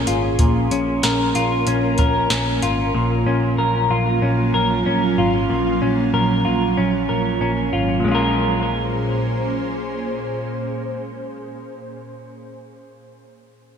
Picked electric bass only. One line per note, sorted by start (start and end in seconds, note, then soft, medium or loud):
0.07 0.35 G#1 medium
0.39 0.67 A#1 medium
0.71 0.99 A#1 medium
1.03 1.31 A#1 medium
1.35 1.63 A#1 medium
1.67 1.95 A#1 medium
1.99 2.27 A#1 medium
2.31 2.59 A#1 medium
2.62 2.90 G#1 medium
2.95 3.23 A#1 medium
3.26 3.54 A#1 medium
3.58 3.86 A#1 medium
3.90 4.18 A#1 medium
4.22 4.50 A#1 medium
4.54 4.82 A#1 medium
4.86 5.14 A#1 medium
5.18 5.46 G#1 medium
5.50 5.78 A#1 medium
5.82 6.10 A#1 medium
6.14 6.42 A#1 medium
6.46 6.74 A#1 medium
6.78 7.06 A#1 medium
7.10 7.38 A#1 medium
7.41 7.69 A#1 medium
7.73 8.01 G#1 medium
8.05 11.58 A#1 medium